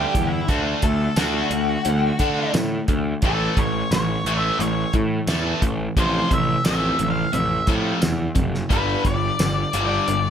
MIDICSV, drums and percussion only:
0, 0, Header, 1, 2, 480
1, 0, Start_track
1, 0, Tempo, 684932
1, 348, Time_signature, 4, 2, 24, 8
1, 7218, End_track
2, 0, Start_track
2, 0, Title_t, "Drums"
2, 104, Note_on_c, 9, 36, 80
2, 105, Note_on_c, 9, 42, 59
2, 174, Note_off_c, 9, 36, 0
2, 175, Note_off_c, 9, 42, 0
2, 340, Note_on_c, 9, 42, 72
2, 342, Note_on_c, 9, 36, 90
2, 410, Note_off_c, 9, 42, 0
2, 412, Note_off_c, 9, 36, 0
2, 576, Note_on_c, 9, 42, 62
2, 581, Note_on_c, 9, 36, 68
2, 647, Note_off_c, 9, 42, 0
2, 651, Note_off_c, 9, 36, 0
2, 815, Note_on_c, 9, 42, 74
2, 815, Note_on_c, 9, 54, 92
2, 823, Note_on_c, 9, 38, 91
2, 885, Note_off_c, 9, 42, 0
2, 885, Note_off_c, 9, 54, 0
2, 893, Note_off_c, 9, 38, 0
2, 1056, Note_on_c, 9, 42, 53
2, 1126, Note_off_c, 9, 42, 0
2, 1295, Note_on_c, 9, 42, 64
2, 1365, Note_off_c, 9, 42, 0
2, 1535, Note_on_c, 9, 42, 49
2, 1540, Note_on_c, 9, 36, 63
2, 1605, Note_off_c, 9, 42, 0
2, 1610, Note_off_c, 9, 36, 0
2, 1778, Note_on_c, 9, 42, 63
2, 1778, Note_on_c, 9, 54, 85
2, 1786, Note_on_c, 9, 38, 97
2, 1849, Note_off_c, 9, 42, 0
2, 1849, Note_off_c, 9, 54, 0
2, 1856, Note_off_c, 9, 38, 0
2, 2018, Note_on_c, 9, 42, 51
2, 2021, Note_on_c, 9, 36, 82
2, 2088, Note_off_c, 9, 42, 0
2, 2091, Note_off_c, 9, 36, 0
2, 2256, Note_on_c, 9, 42, 61
2, 2261, Note_on_c, 9, 36, 82
2, 2326, Note_off_c, 9, 42, 0
2, 2331, Note_off_c, 9, 36, 0
2, 2501, Note_on_c, 9, 42, 53
2, 2502, Note_on_c, 9, 36, 70
2, 2571, Note_off_c, 9, 42, 0
2, 2572, Note_off_c, 9, 36, 0
2, 2744, Note_on_c, 9, 42, 69
2, 2744, Note_on_c, 9, 54, 90
2, 2752, Note_on_c, 9, 38, 100
2, 2814, Note_off_c, 9, 42, 0
2, 2814, Note_off_c, 9, 54, 0
2, 2822, Note_off_c, 9, 38, 0
2, 2987, Note_on_c, 9, 42, 50
2, 3057, Note_off_c, 9, 42, 0
2, 3225, Note_on_c, 9, 42, 64
2, 3295, Note_off_c, 9, 42, 0
2, 3457, Note_on_c, 9, 42, 52
2, 3460, Note_on_c, 9, 36, 69
2, 3527, Note_off_c, 9, 42, 0
2, 3530, Note_off_c, 9, 36, 0
2, 3696, Note_on_c, 9, 42, 67
2, 3696, Note_on_c, 9, 54, 87
2, 3704, Note_on_c, 9, 38, 95
2, 3766, Note_off_c, 9, 42, 0
2, 3766, Note_off_c, 9, 54, 0
2, 3774, Note_off_c, 9, 38, 0
2, 3940, Note_on_c, 9, 36, 76
2, 3940, Note_on_c, 9, 42, 57
2, 4010, Note_off_c, 9, 36, 0
2, 4010, Note_off_c, 9, 42, 0
2, 4181, Note_on_c, 9, 36, 89
2, 4182, Note_on_c, 9, 42, 70
2, 4251, Note_off_c, 9, 36, 0
2, 4252, Note_off_c, 9, 42, 0
2, 4422, Note_on_c, 9, 36, 70
2, 4423, Note_on_c, 9, 42, 59
2, 4492, Note_off_c, 9, 36, 0
2, 4493, Note_off_c, 9, 42, 0
2, 4658, Note_on_c, 9, 42, 72
2, 4658, Note_on_c, 9, 54, 98
2, 4666, Note_on_c, 9, 38, 102
2, 4728, Note_off_c, 9, 42, 0
2, 4728, Note_off_c, 9, 54, 0
2, 4736, Note_off_c, 9, 38, 0
2, 4899, Note_on_c, 9, 42, 50
2, 4969, Note_off_c, 9, 42, 0
2, 5137, Note_on_c, 9, 42, 62
2, 5207, Note_off_c, 9, 42, 0
2, 5375, Note_on_c, 9, 42, 48
2, 5378, Note_on_c, 9, 36, 66
2, 5445, Note_off_c, 9, 42, 0
2, 5448, Note_off_c, 9, 36, 0
2, 5618, Note_on_c, 9, 42, 72
2, 5618, Note_on_c, 9, 54, 85
2, 5626, Note_on_c, 9, 38, 86
2, 5688, Note_off_c, 9, 42, 0
2, 5688, Note_off_c, 9, 54, 0
2, 5696, Note_off_c, 9, 38, 0
2, 5854, Note_on_c, 9, 42, 59
2, 5858, Note_on_c, 9, 36, 78
2, 5924, Note_off_c, 9, 42, 0
2, 5928, Note_off_c, 9, 36, 0
2, 5988, Note_on_c, 9, 38, 27
2, 6058, Note_off_c, 9, 38, 0
2, 6100, Note_on_c, 9, 36, 85
2, 6100, Note_on_c, 9, 42, 66
2, 6170, Note_off_c, 9, 36, 0
2, 6170, Note_off_c, 9, 42, 0
2, 6340, Note_on_c, 9, 36, 74
2, 6341, Note_on_c, 9, 42, 56
2, 6411, Note_off_c, 9, 36, 0
2, 6411, Note_off_c, 9, 42, 0
2, 6581, Note_on_c, 9, 42, 69
2, 6581, Note_on_c, 9, 54, 99
2, 6589, Note_on_c, 9, 38, 99
2, 6651, Note_off_c, 9, 42, 0
2, 6651, Note_off_c, 9, 54, 0
2, 6659, Note_off_c, 9, 38, 0
2, 6821, Note_on_c, 9, 42, 49
2, 6891, Note_off_c, 9, 42, 0
2, 7062, Note_on_c, 9, 42, 65
2, 7132, Note_off_c, 9, 42, 0
2, 7218, End_track
0, 0, End_of_file